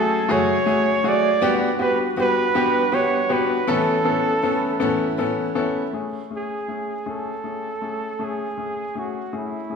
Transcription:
Already playing: F#3 A3 C#4 F#4 G#4 A4 G#5
0.29 C#3 F#3 A3 C#4 F#4 G#4 C#5
0.33 F#2
0.66 F#3 A3 C#4 F#4 G#4
0.70 G#4
1.04 F#3 A3 F#4 G#4
1.09 D5
1.41 G3 B3 D4 F#4 G4 B4
1.79 B3 D4 F#4 G4 B4
2.16 G3 B3 D4 F#4 G4
2.21 B4
2.55 G3 B3 D4 F#4 G4
2.92 G3 B3 D4 F#4 G4 C#5
3.29 B3 D4 F#4 G4 B4
3.67 A2 E3 A3 B3 C#4 E4 A4 B4
4.05 B3 C#4 E4 A4
4.09 B3
4.42 E3 B3 C#4 E4 A4
4.80 A2 E3 B3 C#4 E4 A4
5.17 E3 B3 C#4 E4 A4
5.55 B3 C#4 E4 A4
5.93 A3 C#4 G#4
6.30 A3 C#4 G#4
6.36 G#4
6.68 A3 C#4 G#4
7.06 A3 C#4 G#4 A4
7.44 A3 C#4 G#4
7.82 A3 C#4 G#4
8.19 A3 C#4 G#4
8.24 G#4
8.58 A3 C#4 G#4
8.95 A3 C#4 F#4 G#4
9.33 A3 C#4 G#4
9.38 E4
9.70 A3 C#4 G#4

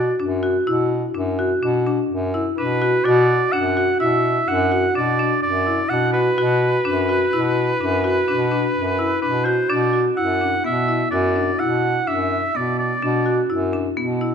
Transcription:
Already playing: B2 F#4 D5
0.19 F#2 D4
0.43 F#4
0.67 B2 E4
1.15 F#2 D4
1.39 F#4
1.62 B2 D4
1.87 D4
2.10 F#2
2.34 E4
2.58 B2 D4 B4
2.82 F#4
3.05 B2 F#4 D5
3.52 F#2 D4 F#5
3.77 F#4
4.00 B2 E4 E5
4.48 F#2 D4 F#5
4.72 F#4
4.95 B2 D4 D5
5.19 D4
5.43 F#2 D5
5.67 E4
5.89 B2 D4 F#5
6.13 F#4 B4
6.38 B2 F#4
6.85 F#2 D4
7.09 F#4
7.33 B2 E4
7.80 F#2 D4
8.04 F#4
8.28 B2 D4
8.51 D4
8.75 F#2
8.99 E4
9.21 B2 D4 B4
9.45 F#4 C5
9.70 B2 D4 D5
9.93 F#4
10.17 F#2 E4 F#5
10.41 D4
10.64 B2 B3 E5
10.88 E4
11.11 F#2 F#4 D5
11.36 D4
11.59 B2 E4 F#5
12.07 F#2 D4 E5
12.55 B2 B3 D5
12.79 D5
13.02 B2 D4
13.26 F#4
13.50 F#2 E4
13.73 D4
13.97 B2 B3
14.21 E4

